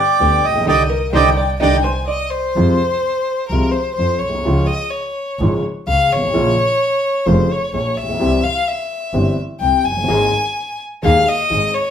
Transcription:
Already playing: violin G5
0.00 bandoneon D5
0.20 upright piano D2 D3 G3 B3 G4, double bass D2, string section D4 G4 B4
0.44 double bass A#1, bandoneon D#5
0.49 upright piano A1
0.55 upright piano A#1
0.61 upright piano B1
0.65 double bass C2, upright piano D3 D#3 G3, string section D4 D#4 G4, bandoneon D5 D#5 G5, violin D#5
0.90 hollow-body jazz guitar A#4
1.12 double bass C2, upright piano D3 D#3 G3, string section D4 D#4 G4, hollow-body jazz guitar C5, bandoneon D5 D#5 G5, violin G5
1.37 hollow-body jazz guitar D5
1.59 double bass C2, upright piano D3 D#3 G3, string section D4 D#4 G4, bandoneon D5 D#5 G5, hollow-body jazz guitar D#5, violin G5
1.82 hollow-body jazz guitar C5, violin G#5
2.07 hollow-body jazz guitar D5, violin D#5
2.30 violin C5
2.56 double bass F2, upright piano F2 C3 F3 G#3 F4
3.48 double bass C2, upright piano C2 C3 F3 G#3, violin A#4
3.52 upright piano F4
3.71 violin C5
3.94 double bass F2, violin C5
3.99 upright piano F2 F3
4.19 double bass B1, violin C#5
4.29 upright piano A#1
4.34 upright piano B1
4.41 upright piano C2
4.45 double bass C#2, upright piano C#2 C#3 F3 G#3 F4
4.67 violin D#5
4.90 violin C#5
5.39 double bass G#1, upright piano G#1 G#2 C#3 F3 G#3 F4
5.87 double bass C#2, upright piano C#2 C#3, violin F5
6.10 double bass G#1, violin C#5
6.16 upright piano G1
6.22 upright piano G#1
6.28 upright piano A1
6.33 double bass A#1, upright piano A#1 A#2 C#3 F3 A#3 F4
7.26 upright piano F1 F2 C#3 F3 A#3 F4, double bass F1, violin C5
7.51 violin C#5
7.73 double bass A#1, upright piano A#1 A#2, violin C#5
7.97 double bass A#1, violin E5
8.02 upright piano A1
8.09 upright piano A#1
8.13 upright piano B1
8.19 upright piano C2 C3 E3 G3 C4 G4, double bass C2
8.43 violin F5
8.67 violin E5
9.13 double bass G1, upright piano G1 G2 E3 G3 C4 G4
9.60 double bass C2, upright piano C2 C3, violin G5
9.85 double bass F#1, violin G#5
9.91 upright piano F1
9.96 upright piano F#1
10.04 upright piano G1 D#3
10.08 double bass G#1, upright piano G#1 G#2 G#3 A#3 G#4, string section A#3 D#4 G#4
11.03 upright piano D#1 D#2 D#3 G#3 A#3 G#4, double bass D#2, string section A#3 D#4 G#4, violin F5
11.28 violin D#5
11.50 upright piano G#1 G#2, double bass G#1, string section A#3 D#4 G#4
11.74 violin C#5

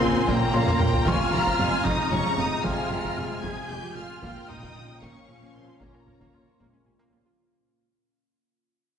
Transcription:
Already playing: french horn section C#3 A#3, ambient pad C#3 A#3 F4 F5, viola section C4, violin section C6
0.01 double bass section A#1, cello section A#2, synth pluck F4, violin section G#5
0.15 synth pluck F4
0.27 double bass section A#1, cello section A#2, viola section A#3, synth pluck A#3, violin section G5 A#5, taiko
0.42 synth pluck C#4
0.54 double bass section A#1, cello section A#2, synth pluck C#4, felt piano C#5 C6, violin section F5
0.67 synth pluck A#3, taiko low-mid
0.80 double bass section A#1, cello section A#2, synth pluck F4, violin section G5, taiko low-mid
0.93 synth pluck F4, taiko low
1.06 double bass section F1, cello section F2, french horn section C3 G#3, ambient pad C3 G#3 F4 F5, synth pluck F3, viola section F4, violin section G#5 F6, felt piano C#6, taiko
1.20 synth pluck F4, taiko rim
1.32 double bass section F1, cello section F2, synth pluck F4, violin section A#5, taiko low-mid
1.47 synth pluck F3, taiko
1.59 double bass section F1, cello section F2, synth pluck C4, violin section G#5
1.73 synth pluck C4
1.86 double bass section F1, cello section F2, synth pluck F3, viola section D#4, violin section A#5 D#6, taiko
2.00 synth pluck G#3
2.12 double bass section F1, cello section F2, synth pluck G#3, viola section C#4, violin section C#6
2.26 synth pluck F3
2.38 double bass section F1, cello section F2, synth pluck C4, viola section D#4, violin section D#6
2.52 synth pluck C4
2.64 double bass section F1, cello section F2, synth pluck F3, viola section F4, violin section G#5 F6, felt piano C6, taiko
2.79 synth pluck F4
2.91 double bass section F1, cello section F2, synth pluck F4, violin section A#5, taiko low-mid
3.04 synth pluck F3, taiko
3.17 double bass section F1, cello section F2, synth pluck C4, violin section G#5
3.31 synth pluck C4
3.43 double bass section F1, cello section F2, synth pluck F3, viola section G#4, violin section G#6, taiko
3.57 synth pluck G#3, taiko rim
3.69 double bass section F1, cello section F2, synth pluck G#3, viola section G4, violin section G6
3.83 synth pluck F3
3.96 double bass section F1, cello section F2, synth pluck C4, viola section F4, violin section F6
4.10 synth pluck C4
4.22 double bass section A#1, cello section A#2, french horn section F3 C#4, synth pluck A#3, ambient pad A#3 C#4, viola section F4, violin section G5 F6, taiko
4.37 synth pluck A#4
4.49 double bass section A#1, cello section A#2, viola section D#4, synth pluck A#4, felt piano A#5, violin section D#6, taiko low-mid
4.63 synth pluck A#3, taiko
4.75 double bass section A#1, cello section A#2, synth pluck F4
4.89 synth pluck F4
5.01 double bass section A#1, cello section A#2, synth pluck A#3, viola section C#4, violin section F5 C#6, taiko
5.15 synth pluck C#4
5.28 double bass section A#1, cello section A#2, synth pluck C#4
5.42 synth pluck A#3
5.53 double bass section A#1, cello section A#2, viola section C4, synth pluck F4, violin section C6
5.68 synth pluck F4
5.80 double bass section A#1, cello section A#2, viola section A#3, synth pluck A#3, violin section C#5 A#5, taiko
5.94 synth pluck A#4, taiko rim
6.07 double bass section A#1, cello section A#2, synth pluck A#4, taiko low-mid
6.20 synth pluck A#3, taiko
6.33 double bass section A#1, cello section A#2, synth pluck F4, felt piano C6
6.47 synth pluck F4
6.59 double bass section A#1, cello section A#2, french horn section G#3, synth pluck A#3, taiko
6.73 synth pluck C#4
6.85 double bass section A#1, cello section A#2, french horn section G3, synth pluck C#4
6.99 synth pluck A#3, taiko rim
7.11 double bass section A#1, cello section A#2, french horn section F3, synth pluck F4
7.26 synth pluck F4

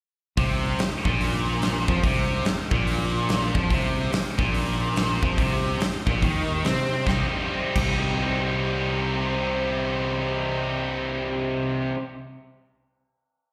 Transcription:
0.37 fingered electric bass C2, distorted electric guitar C3, tonewheel organ C4 G4 D#5, kick, open hi-hat
0.79 muted fingered electric bass stroke, muted distorted electric guitar stroke, snare, open hi-hat
1.05 fingered electric bass A#1, distorted electric guitar A#2, kick
1.21 open hi-hat
1.62 snare, open hi-hat
1.88 fingered electric bass F2, distorted electric guitar F3, kick
2.04 fingered electric bass C2, distorted electric guitar C3, kick, open hi-hat
2.45 muted fingered electric bass stroke, muted distorted electric guitar stroke, snare, open hi-hat
2.71 fingered electric bass A#1, distorted electric guitar A#2, kick
2.87 open hi-hat
3.29 snare, open hi-hat
3.55 fingered electric bass F2, distorted electric guitar F3, kick
3.70 fingered electric bass C2, distorted electric guitar C3, tonewheel organ G4 C5 D#5, kick, open hi-hat
4.12 muted fingered electric bass stroke, muted distorted electric guitar stroke, snare, open hi-hat
4.39 fingered electric bass A#1, distorted electric guitar A#2, kick
4.54 open hi-hat
4.96 snare, open hi-hat
5.23 fingered electric bass F2, distorted electric guitar F3, kick
5.38 fingered electric bass C2, distorted electric guitar C3, kick, open hi-hat
5.80 muted fingered electric bass stroke, muted distorted electric guitar stroke, snare, open hi-hat
6.07 fingered electric bass A#1, distorted electric guitar A#2, kick
6.22 fingered electric bass D#2, distorted electric guitar D#3, kick, open hi-hat
6.64 fingered electric bass C3, distorted electric guitar C4, snare, open hi-hat
7.05 fingered electric bass C2, distorted electric guitar C3 G3 C4 D#4, tonewheel organ C4 G4 D#5, kick, snare
7.75 fingered electric bass C2, distorted electric guitar C3 G3 C4 D#4, kick, crash

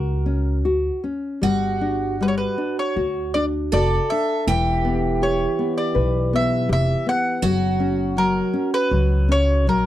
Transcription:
Already playing: upright bass C#2, nylon-string guitar F#4, twelve-string acoustic guitar F#4, mandolin A#4
0.26 nylon-string guitar C#4
0.64 upright bass D2, nylon-string guitar F#4
1.04 nylon-string guitar C#4
1.42 upright bass G1, nylon-string guitar G3, twelve-string acoustic guitar F#4
1.81 nylon-string guitar D4
2.21 nylon-string guitar G3, mandolin B4
2.28 mandolin C#5
2.38 mandolin B4
2.58 nylon-string guitar D4
2.79 mandolin C#5
2.96 upright bass D2, nylon-string guitar F#4
3.34 nylon-string guitar D4, mandolin D5
3.72 upright bass F1, nylon-string guitar F#4, twelve-string acoustic guitar A4, mandolin D5
4.10 nylon-string guitar D4, mandolin E5
4.47 upright bass E1, nylon-string guitar E3, twelve-string acoustic guitar G4
4.85 nylon-string guitar B3
5.22 nylon-string guitar G4, mandolin C#5
5.59 nylon-string guitar B3
5.78 mandolin D5
5.95 upright bass B1, nylon-string guitar B4
6.33 nylon-string guitar B3, mandolin E5
6.69 upright bass F1, nylon-string guitar G4, mandolin E5
7.06 nylon-string guitar B3, mandolin F#5
7.42 upright bass F#1, nylon-string guitar F#3, twelve-string acoustic guitar F#4
7.80 nylon-string guitar C#4
8.17 nylon-string guitar F#3, mandolin A#4
8.53 nylon-string guitar C#4
8.74 mandolin B4
8.91 upright bass C#2, nylon-string guitar F#3
9.29 nylon-string guitar C#4, mandolin C#5
9.67 upright bass A#1, nylon-string guitar F#3, mandolin A#4

